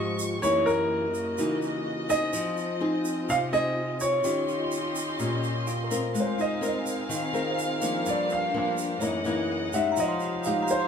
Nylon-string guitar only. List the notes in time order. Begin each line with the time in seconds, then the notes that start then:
Already playing: G#2 F3 G#3 C4
0.42 F#2 E3 A#3 D#4
1.38 C#3 E3 A#3 D#4
2.09 C4 D#4 G#4
2.33 F3
2.80 C4 D#4 G#4
3.29 C3
3.53 C4 D#4 G#4
4.24 D#3 C#4 G4
5.19 A#2 C#4 G4
5.91 C4 F4 A#4
6.15 G#3
6.61 C4 F4 A#4
7.09 D#3
7.33 C4 F4 A#4
7.81 F3 A#3 D4
8.06 G2
8.54 F3 A#3 D4
9.01 F#2 E3 A#3 D#4
9.25 E3 A#3 D#4
9.73 G#3 D#4 G4
9.97 F3
10.46 G#3 D#4 G4